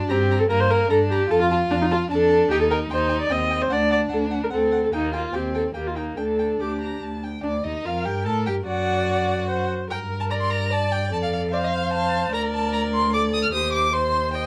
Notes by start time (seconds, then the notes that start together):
Already playing: D4
0.09 G2 C4 G4 A#5
0.31 A#5
0.40 A4
0.50 G2 A#3 A#4 A#5
0.60 C5
0.71 A#4 A#5
0.90 G2 D4 A4 A#5
1.10 G4 A#5
1.30 F2 F4 A4 A5
1.41 F4
1.50 F4 A5
1.70 F2 D4 A5
1.81 D#4
1.91 F4 A5
2.11 F2 D4 A4 A5
2.31 A5
2.51 D#2 D#4 G4 G5
2.61 A4
2.71 A#4 G5
2.90 D#2 D#4 C5 G5
3.09 G5
3.21 D5
3.30 D#2 C4 D#5 G5
3.50 G5
3.62 C5
3.70 D2 D4 D5 F#5
3.90 D5 F#5
4.09 D2 A4 F#5
4.31 F#5
4.44 A#4
4.50 D2 C4 A4 F#5
4.72 F#5
4.85 A4
4.93 D#2 A#3 D#4 G5
5.13 F4 G5
5.33 D#2 C4 G4 G5
5.55 A4 G5
5.74 D#2 A#3 G4 G5
5.87 F4
5.96 D#4 G5
6.17 D2 D4 A4 G5
6.39 G5
6.60 D2 G4 D6
6.81 A#5
7.03 D2 A5
7.24 G5
7.43 D2 D4 D5
7.64 D#2 D#4 D#5
7.85 F2 F4 A#4 F5
8.04 G2 G4 G5
8.26 A2 A4 A5
8.46 G2 G4 G5
8.67 F#2 F#4 D5 F#5
9.49 C5
9.90 G2 A#4 G5
10.20 A5
10.31 A#4 D5 A#5
10.41 C6
10.50 A#5
10.71 D5 A5
10.92 G5
11.10 F2 A4 D5 A5
11.23 F5
11.33 F5
11.51 C5 D5 F5
11.64 D#5
11.73 F5
11.93 F5 A5
12.33 D2 A#4 D5 A#5
12.54 A5
12.73 A#5
12.94 C6
13.13 A4 D5 D6
13.33 D#6
13.43 F6
13.53 D#2 G4 C5 D#6
13.73 D6
13.93 C5 C6
14.34 C5 D#5 G5